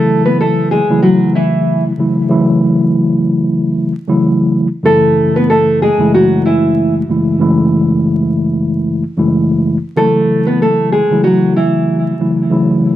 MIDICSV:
0, 0, Header, 1, 3, 480
1, 0, Start_track
1, 0, Key_signature, 3, "minor"
1, 0, Tempo, 638298
1, 1734, Time_signature, 4, 2, 24, 8
1, 9745, End_track
2, 0, Start_track
2, 0, Title_t, "Nylon-string guitar"
2, 0, Program_c, 0, 24
2, 0, Note_on_c, 0, 57, 89
2, 0, Note_on_c, 0, 69, 109
2, 176, Note_off_c, 0, 69, 0
2, 179, Note_off_c, 0, 57, 0
2, 192, Note_on_c, 0, 71, 75
2, 198, Note_on_c, 0, 59, 61
2, 281, Note_off_c, 0, 71, 0
2, 285, Note_off_c, 0, 59, 0
2, 305, Note_on_c, 0, 69, 82
2, 311, Note_on_c, 0, 57, 67
2, 516, Note_off_c, 0, 69, 0
2, 520, Note_off_c, 0, 57, 0
2, 534, Note_on_c, 0, 68, 86
2, 540, Note_on_c, 0, 56, 67
2, 750, Note_off_c, 0, 68, 0
2, 754, Note_off_c, 0, 56, 0
2, 771, Note_on_c, 0, 66, 88
2, 777, Note_on_c, 0, 54, 69
2, 988, Note_off_c, 0, 66, 0
2, 992, Note_off_c, 0, 54, 0
2, 1017, Note_on_c, 0, 64, 73
2, 1023, Note_on_c, 0, 52, 60
2, 1376, Note_off_c, 0, 64, 0
2, 1379, Note_off_c, 0, 52, 0
2, 3651, Note_on_c, 0, 69, 107
2, 3658, Note_on_c, 0, 57, 82
2, 4013, Note_off_c, 0, 69, 0
2, 4017, Note_off_c, 0, 57, 0
2, 4030, Note_on_c, 0, 71, 73
2, 4037, Note_on_c, 0, 59, 58
2, 4121, Note_off_c, 0, 71, 0
2, 4124, Note_off_c, 0, 59, 0
2, 4134, Note_on_c, 0, 69, 88
2, 4140, Note_on_c, 0, 57, 67
2, 4350, Note_off_c, 0, 69, 0
2, 4354, Note_off_c, 0, 57, 0
2, 4378, Note_on_c, 0, 68, 82
2, 4384, Note_on_c, 0, 56, 64
2, 4592, Note_off_c, 0, 68, 0
2, 4596, Note_off_c, 0, 56, 0
2, 4620, Note_on_c, 0, 66, 86
2, 4626, Note_on_c, 0, 54, 65
2, 4833, Note_off_c, 0, 66, 0
2, 4837, Note_off_c, 0, 54, 0
2, 4854, Note_on_c, 0, 64, 77
2, 4861, Note_on_c, 0, 52, 64
2, 5215, Note_off_c, 0, 64, 0
2, 5218, Note_off_c, 0, 52, 0
2, 7499, Note_on_c, 0, 69, 106
2, 7503, Note_on_c, 0, 57, 84
2, 7857, Note_off_c, 0, 69, 0
2, 7859, Note_off_c, 0, 57, 0
2, 7871, Note_on_c, 0, 71, 75
2, 7878, Note_on_c, 0, 59, 58
2, 7961, Note_off_c, 0, 71, 0
2, 7965, Note_off_c, 0, 59, 0
2, 7986, Note_on_c, 0, 69, 75
2, 7991, Note_on_c, 0, 57, 65
2, 8197, Note_off_c, 0, 69, 0
2, 8200, Note_off_c, 0, 57, 0
2, 8214, Note_on_c, 0, 68, 80
2, 8220, Note_on_c, 0, 56, 64
2, 8430, Note_off_c, 0, 68, 0
2, 8434, Note_off_c, 0, 56, 0
2, 8450, Note_on_c, 0, 66, 85
2, 8455, Note_on_c, 0, 54, 65
2, 8668, Note_off_c, 0, 66, 0
2, 8671, Note_off_c, 0, 54, 0
2, 8695, Note_on_c, 0, 64, 71
2, 8701, Note_on_c, 0, 52, 59
2, 9055, Note_off_c, 0, 64, 0
2, 9058, Note_off_c, 0, 52, 0
2, 9745, End_track
3, 0, Start_track
3, 0, Title_t, "Tine electric piano"
3, 0, Program_c, 1, 4
3, 0, Note_on_c, 1, 49, 96
3, 0, Note_on_c, 1, 52, 91
3, 0, Note_on_c, 1, 54, 80
3, 0, Note_on_c, 1, 57, 79
3, 0, Note_on_c, 1, 64, 106
3, 596, Note_off_c, 1, 49, 0
3, 598, Note_off_c, 1, 52, 0
3, 600, Note_off_c, 1, 54, 0
3, 601, Note_off_c, 1, 57, 0
3, 604, Note_off_c, 1, 64, 0
3, 669, Note_on_c, 1, 49, 90
3, 672, Note_on_c, 1, 52, 81
3, 677, Note_on_c, 1, 54, 89
3, 681, Note_on_c, 1, 57, 81
3, 685, Note_on_c, 1, 64, 100
3, 1436, Note_off_c, 1, 49, 0
3, 1438, Note_off_c, 1, 52, 0
3, 1440, Note_off_c, 1, 54, 0
3, 1442, Note_off_c, 1, 57, 0
3, 1444, Note_off_c, 1, 64, 0
3, 1488, Note_on_c, 1, 49, 73
3, 1492, Note_on_c, 1, 52, 73
3, 1496, Note_on_c, 1, 54, 70
3, 1500, Note_on_c, 1, 57, 67
3, 1503, Note_on_c, 1, 64, 89
3, 1708, Note_off_c, 1, 49, 0
3, 1712, Note_off_c, 1, 52, 0
3, 1716, Note_off_c, 1, 54, 0
3, 1717, Note_on_c, 1, 49, 90
3, 1721, Note_on_c, 1, 52, 92
3, 1722, Note_off_c, 1, 57, 0
3, 1724, Note_off_c, 1, 64, 0
3, 1725, Note_on_c, 1, 54, 87
3, 1730, Note_on_c, 1, 57, 87
3, 1734, Note_on_c, 1, 64, 102
3, 2943, Note_off_c, 1, 49, 0
3, 2945, Note_off_c, 1, 52, 0
3, 2947, Note_off_c, 1, 54, 0
3, 2949, Note_off_c, 1, 57, 0
3, 2951, Note_off_c, 1, 64, 0
3, 3063, Note_on_c, 1, 49, 92
3, 3067, Note_on_c, 1, 52, 88
3, 3072, Note_on_c, 1, 54, 90
3, 3075, Note_on_c, 1, 57, 87
3, 3079, Note_on_c, 1, 64, 105
3, 3505, Note_off_c, 1, 49, 0
3, 3507, Note_off_c, 1, 52, 0
3, 3509, Note_off_c, 1, 54, 0
3, 3510, Note_off_c, 1, 57, 0
3, 3513, Note_off_c, 1, 64, 0
3, 3633, Note_on_c, 1, 42, 94
3, 3636, Note_on_c, 1, 49, 91
3, 3640, Note_on_c, 1, 52, 84
3, 3646, Note_on_c, 1, 57, 91
3, 3650, Note_on_c, 1, 64, 97
3, 4427, Note_off_c, 1, 42, 0
3, 4428, Note_off_c, 1, 49, 0
3, 4430, Note_off_c, 1, 52, 0
3, 4433, Note_off_c, 1, 57, 0
3, 4435, Note_off_c, 1, 64, 0
3, 4497, Note_on_c, 1, 42, 89
3, 4500, Note_on_c, 1, 49, 83
3, 4504, Note_on_c, 1, 52, 85
3, 4507, Note_on_c, 1, 56, 89
3, 4511, Note_on_c, 1, 57, 90
3, 4514, Note_on_c, 1, 64, 101
3, 5270, Note_off_c, 1, 42, 0
3, 5272, Note_off_c, 1, 49, 0
3, 5274, Note_off_c, 1, 52, 0
3, 5275, Note_off_c, 1, 56, 0
3, 5277, Note_off_c, 1, 57, 0
3, 5278, Note_off_c, 1, 64, 0
3, 5331, Note_on_c, 1, 42, 69
3, 5333, Note_on_c, 1, 49, 66
3, 5336, Note_on_c, 1, 52, 68
3, 5340, Note_on_c, 1, 56, 69
3, 5344, Note_on_c, 1, 57, 63
3, 5347, Note_on_c, 1, 64, 84
3, 5548, Note_off_c, 1, 42, 0
3, 5552, Note_off_c, 1, 49, 0
3, 5555, Note_off_c, 1, 52, 0
3, 5557, Note_off_c, 1, 56, 0
3, 5557, Note_on_c, 1, 42, 91
3, 5561, Note_off_c, 1, 57, 0
3, 5561, Note_on_c, 1, 49, 80
3, 5564, Note_on_c, 1, 52, 93
3, 5565, Note_off_c, 1, 64, 0
3, 5566, Note_on_c, 1, 56, 76
3, 5570, Note_on_c, 1, 57, 85
3, 5574, Note_on_c, 1, 64, 101
3, 6783, Note_off_c, 1, 42, 0
3, 6785, Note_off_c, 1, 49, 0
3, 6786, Note_off_c, 1, 52, 0
3, 6787, Note_off_c, 1, 56, 0
3, 6790, Note_off_c, 1, 57, 0
3, 6791, Note_off_c, 1, 64, 0
3, 6895, Note_on_c, 1, 42, 90
3, 6898, Note_on_c, 1, 49, 81
3, 6902, Note_on_c, 1, 52, 89
3, 6905, Note_on_c, 1, 56, 85
3, 6908, Note_on_c, 1, 57, 85
3, 6912, Note_on_c, 1, 64, 95
3, 7340, Note_off_c, 1, 42, 0
3, 7342, Note_off_c, 1, 49, 0
3, 7344, Note_off_c, 1, 52, 0
3, 7346, Note_off_c, 1, 56, 0
3, 7347, Note_off_c, 1, 57, 0
3, 7349, Note_off_c, 1, 64, 0
3, 7489, Note_on_c, 1, 49, 92
3, 7493, Note_on_c, 1, 52, 88
3, 7498, Note_on_c, 1, 54, 78
3, 7502, Note_on_c, 1, 57, 78
3, 7506, Note_on_c, 1, 64, 99
3, 8275, Note_off_c, 1, 49, 0
3, 8277, Note_off_c, 1, 52, 0
3, 8279, Note_off_c, 1, 54, 0
3, 8281, Note_off_c, 1, 57, 0
3, 8283, Note_off_c, 1, 64, 0
3, 8349, Note_on_c, 1, 49, 86
3, 8353, Note_on_c, 1, 52, 78
3, 8357, Note_on_c, 1, 54, 89
3, 8361, Note_on_c, 1, 57, 78
3, 8365, Note_on_c, 1, 64, 96
3, 9116, Note_off_c, 1, 49, 0
3, 9118, Note_off_c, 1, 52, 0
3, 9120, Note_off_c, 1, 54, 0
3, 9122, Note_off_c, 1, 57, 0
3, 9124, Note_off_c, 1, 64, 0
3, 9167, Note_on_c, 1, 49, 70
3, 9171, Note_on_c, 1, 52, 71
3, 9176, Note_on_c, 1, 54, 69
3, 9180, Note_on_c, 1, 57, 63
3, 9184, Note_on_c, 1, 64, 85
3, 9391, Note_off_c, 1, 49, 0
3, 9394, Note_off_c, 1, 52, 0
3, 9398, Note_off_c, 1, 54, 0
3, 9400, Note_on_c, 1, 49, 88
3, 9402, Note_off_c, 1, 57, 0
3, 9403, Note_on_c, 1, 52, 85
3, 9404, Note_off_c, 1, 64, 0
3, 9407, Note_on_c, 1, 54, 85
3, 9412, Note_on_c, 1, 57, 80
3, 9417, Note_on_c, 1, 64, 95
3, 9745, Note_off_c, 1, 49, 0
3, 9745, Note_off_c, 1, 52, 0
3, 9745, Note_off_c, 1, 54, 0
3, 9745, Note_off_c, 1, 57, 0
3, 9745, Note_off_c, 1, 64, 0
3, 9745, End_track
0, 0, End_of_file